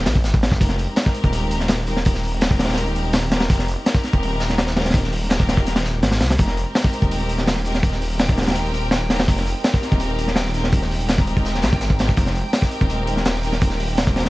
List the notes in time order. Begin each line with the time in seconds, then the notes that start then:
Already playing: G#3 C4 D#4 G4 A#4
0.06 A#1, snare, closed hi-hat, open hi-hat
0.15 kick
0.24 G#1, snare, closed hi-hat, open hi-hat
0.34 kick
0.42 snare, closed hi-hat, open hi-hat
0.51 kick, snare
0.61 F1 G#3 C4 D#4 G4 A#4, kick, closed hi-hat, open hi-hat
0.69 snare, closed hi-hat
0.78 closed hi-hat, open hi-hat
0.88 G#3 C4 D#4 G4 A#4
0.96 snare, closed hi-hat, open hi-hat
1.06 kick, snare
1.14 closed hi-hat, open hi-hat
1.24 D#1, kick, closed hi-hat
1.33 closed hi-hat, open hi-hat
1.51 closed hi-hat, open hi-hat
1.60 snare
1.68 snare, closed hi-hat, open hi-hat
1.78 snare
1.87 G#3 C4 D#4 G4 A#4, closed hi-hat, open hi-hat
1.97 snare
2.05 G#3 C4 D#4 G4 A#4, kick, closed hi-hat, open hi-hat
2.14 snare
2.23 open hi-hat
2.32 G#3 C4 D#4 G4 A#4, closed hi-hat
2.41 snare, closed hi-hat, open hi-hat
2.51 kick
2.59 snare, closed hi-hat, open hi-hat
2.64 snare, open hi-hat
2.69 D#1, snare, closed hi-hat, open hi-hat
2.73 snare, closed hi-hat, open hi-hat
2.78 open hi-hat
2.87 closed hi-hat
2.95 closed hi-hat, open hi-hat
3.13 snare, closed hi-hat, open hi-hat
3.32 G#3 C4 D#4 G4 A#4, snare, closed hi-hat, open hi-hat
3.40 snare, open hi-hat
3.49 F1 G#3 C4 D#4 G4 A#4, kick, closed hi-hat, open hi-hat
3.59 snare, closed hi-hat
3.68 closed hi-hat, open hi-hat
3.77 G#3 C4 D#4 G4 A#4
3.86 snare, closed hi-hat, open hi-hat
3.94 kick, snare
4.03 snare, closed hi-hat, open hi-hat
4.13 D#1, kick, closed hi-hat
4.23 closed hi-hat, open hi-hat
4.40 snare, closed hi-hat, open hi-hat
4.50 snare
4.58 snare, closed hi-hat, open hi-hat
4.67 snare, closed hi-hat
4.76 G#3 C4 D#4 G4 A#4, snare, open hi-hat
4.81 snare, open hi-hat
4.85 snare, closed hi-hat, open hi-hat
4.90 snare, open hi-hat
4.94 G#3 C4 D#4 G4 A#4, kick, closed hi-hat, open hi-hat
5.04 snare
5.12 open hi-hat
5.22 G#3 C4 D#4 G4 A#4, closed hi-hat
5.30 snare, closed hi-hat, open hi-hat
5.40 kick
5.49 snare, closed hi-hat, open hi-hat
5.57 D#1, kick, closed hi-hat
5.66 snare, closed hi-hat, open hi-hat
5.76 snare, closed hi-hat, open hi-hat
5.84 snare, closed hi-hat
6.03 G#1, snare, closed hi-hat, open hi-hat
6.11 snare, closed hi-hat, open hi-hat
6.20 C2, snare, closed hi-hat, open hi-hat
6.29 snare, closed hi-hat, open hi-hat
6.38 F1 G#3 C4 D#4 G4 A#4 G5, kick, closed hi-hat, open hi-hat
6.48 snare, closed hi-hat
6.57 closed hi-hat, open hi-hat
6.67 G#3 C4 D#4 G4 A#4
6.75 snare, closed hi-hat, open hi-hat
6.84 kick, snare
6.93 closed hi-hat, open hi-hat
7.02 D#1, kick, closed hi-hat
7.11 closed hi-hat, open hi-hat
7.29 closed hi-hat, open hi-hat
7.38 snare
7.47 snare, closed hi-hat, open hi-hat
7.56 snare
7.65 G#3 C4 D#4 G4 A#4, closed hi-hat, open hi-hat
7.74 snare
7.83 G#3 C4 D#4 G4 A#4, kick, closed hi-hat, open hi-hat
7.92 snare
8.01 open hi-hat
8.11 G#3 C4 D#4 G4 A#4, closed hi-hat
8.19 snare, closed hi-hat, open hi-hat
8.29 kick
8.37 snare, closed hi-hat, open hi-hat
8.42 snare, open hi-hat
8.47 D#1, snare, closed hi-hat, open hi-hat
8.51 snare, closed hi-hat, open hi-hat
8.56 open hi-hat
8.66 closed hi-hat
8.74 closed hi-hat, open hi-hat
8.91 snare, closed hi-hat, open hi-hat
8.93 snare
9.10 G#3 C4 D#4 G4 A#4, snare, closed hi-hat, open hi-hat
9.19 snare, open hi-hat
9.28 F1 G#3 C4 D#4 G4 A#4, kick, closed hi-hat, open hi-hat
9.37 snare, closed hi-hat
9.47 closed hi-hat, open hi-hat
9.56 G#3 C4 D#4 G4 A#4
9.64 snare, closed hi-hat, open hi-hat
9.74 kick, snare
9.83 snare, closed hi-hat, open hi-hat
9.92 D#1, kick, closed hi-hat
10.00 closed hi-hat, open hi-hat
10.18 closed hi-hat, open hi-hat
10.28 snare
10.36 snare, closed hi-hat, open hi-hat
10.45 snare
10.54 G#3 C4 D#4 G4 A#4, closed hi-hat, open hi-hat
10.64 snare
10.72 G#3 C4 D#4 G4 A#4, kick, closed hi-hat, open hi-hat
10.82 snare
10.91 open hi-hat
11.00 G#3 C4 D#4 G4 A#4, closed hi-hat
11.09 snare, closed hi-hat, open hi-hat
11.18 kick
11.27 closed hi-hat, open hi-hat
11.36 D#1, kick, closed hi-hat
11.45 snare, closed hi-hat, open hi-hat
11.55 snare, closed hi-hat
11.62 A#1, snare, closed hi-hat, open hi-hat
11.73 kick
11.81 G#1, snare, closed hi-hat, open hi-hat
11.90 kick
11.99 G#3 C4 D#4 G4 A#4, snare, closed hi-hat, open hi-hat
12.08 kick, snare
12.17 F1 G#3 C4 D#4 G4 A#4, kick, closed hi-hat, open hi-hat
12.26 snare, closed hi-hat
12.35 closed hi-hat, open hi-hat
12.44 G#3 C4 D#4 G4 A#4
12.53 snare, closed hi-hat, open hi-hat
12.62 kick, snare
12.71 closed hi-hat, open hi-hat
12.81 D#1, kick, closed hi-hat
12.89 closed hi-hat, open hi-hat
13.07 closed hi-hat, open hi-hat
13.17 snare
13.25 snare, closed hi-hat, open hi-hat
13.35 snare
13.43 G#3 C4 D#4 G4 A#4, closed hi-hat, open hi-hat
13.52 snare
13.61 G#3 C4 D#4 G4 A#4, kick, closed hi-hat, open hi-hat
13.70 snare
13.80 open hi-hat
13.89 G#3 C4 D#4 G4 A#4, closed hi-hat
13.97 snare, closed hi-hat, open hi-hat
14.07 kick
14.16 snare, closed hi-hat, open hi-hat
14.19 snare, open hi-hat
14.25 D#1, snare, closed hi-hat, open hi-hat